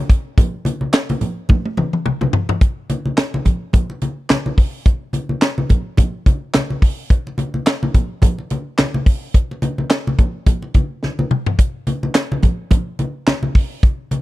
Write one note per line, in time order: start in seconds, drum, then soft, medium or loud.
0.10 kick loud
0.10 closed hi-hat medium
0.38 kick loud
0.38 closed hi-hat loud
0.38 muted conga soft
0.38 low conga medium
0.65 closed hi-hat medium
0.65 high conga medium
0.81 high conga medium
0.93 snare loud
0.93 clap medium
0.93 closed hi-hat loud
1.09 closed hi-hat medium
1.09 high conga medium
1.21 closed hi-hat medium
1.21 low conga medium
1.49 kick loud
1.49 high tom medium
1.49 muted conga soft
1.49 low conga medium
1.66 high tom medium
1.77 mid tom medium
1.77 high conga medium
1.93 mid tom medium
2.06 mid tom medium
2.06 high conga medium
2.21 mid tom medium
2.21 muted conga soft
2.21 high conga medium
2.33 floor tom loud
2.49 floor tom loud
2.61 kick loud
2.61 closed hi-hat loud
2.61 muted conga soft
2.90 closed hi-hat medium
2.90 high conga medium
3.05 high conga medium
3.17 snare loud
3.17 clap medium
3.17 closed hi-hat medium
3.17 muted conga soft
3.34 muted conga soft
3.34 high conga medium
3.45 kick medium
3.45 closed hi-hat medium
3.45 low conga medium
3.73 kick loud
3.73 closed hi-hat loud
3.73 low conga medium
3.90 muted conga soft
4.01 closed hi-hat medium
4.01 high conga medium
4.30 snare loud
4.30 clap medium
4.30 closed hi-hat medium
4.30 muted conga soft
4.30 high conga medium
4.46 muted conga soft
4.46 high conga medium
4.58 kick loud
4.58 open hi-hat medium
4.86 kick loud
4.86 closed hi-hat medium
4.86 muted conga soft
5.13 closed hi-hat medium
5.13 high conga medium
5.29 high conga medium
5.42 snare loud
5.42 clap medium
5.42 closed hi-hat medium
5.58 high conga medium
5.70 kick medium
5.70 closed hi-hat medium
5.70 low conga medium
5.97 kick loud
5.97 closed hi-hat loud
5.97 low conga medium
6.26 kick loud
6.26 closed hi-hat medium
6.26 high conga medium
6.54 snare loud
6.54 clap medium
6.54 closed hi-hat medium
6.54 muted conga soft
6.54 high conga medium
6.70 high conga medium
6.82 kick loud
6.82 open hi-hat medium
7.10 kick loud
7.10 closed hi-hat loud
7.10 muted conga soft
7.27 muted conga soft
7.38 closed hi-hat medium
7.38 high conga medium
7.54 high conga medium
7.67 snare loud
7.67 clap medium
7.67 closed hi-hat medium
7.83 muted conga soft
7.83 high conga medium
7.94 kick medium
7.94 closed hi-hat medium
7.94 low conga medium
8.22 kick loud
8.22 closed hi-hat loud
8.22 muted conga soft
8.22 low conga medium
8.39 muted conga soft
8.50 closed hi-hat medium
8.50 high conga medium
8.78 snare loud
8.78 clap medium
8.78 closed hi-hat medium
8.78 muted conga soft
8.78 high conga medium
8.94 muted conga soft
8.94 high conga medium
9.06 kick loud
9.06 open hi-hat medium
9.34 kick loud
9.34 closed hi-hat loud
9.51 muted conga soft
9.62 closed hi-hat medium
9.62 high conga medium
9.78 high conga medium
9.90 snare loud
9.90 clap medium
9.90 closed hi-hat medium
10.07 muted conga soft
10.07 high conga medium
10.18 kick medium
10.18 closed hi-hat medium
10.18 low conga medium
10.46 kick loud
10.46 closed hi-hat loud
10.46 muted conga soft
10.46 low conga medium
10.62 muted conga soft
10.74 kick loud
10.74 closed hi-hat medium
10.74 high conga medium
11.03 snare medium
11.03 muted conga soft
11.03 high conga medium
11.19 muted conga soft
11.19 high conga medium
11.31 mid tom loud
11.46 floor tom medium
11.59 kick loud
11.59 closed hi-hat loud
11.87 closed hi-hat medium
11.87 high conga medium
12.03 high conga medium
12.15 snare loud
12.15 clap medium
12.15 closed hi-hat medium
12.32 muted conga soft
12.32 high conga medium
12.43 kick medium
12.43 closed hi-hat medium
12.43 low conga medium
12.71 kick loud
12.71 closed hi-hat loud
12.71 muted conga soft
12.71 low conga medium
12.99 closed hi-hat medium
12.99 high conga medium
13.27 snare loud
13.27 clap medium
13.27 closed hi-hat medium
13.27 high conga medium
13.43 muted conga soft
13.43 high conga medium
13.55 kick loud
13.55 open hi-hat medium
13.83 kick loud
13.83 closed hi-hat loud
13.83 muted conga soft
14.11 closed hi-hat medium
14.11 high conga medium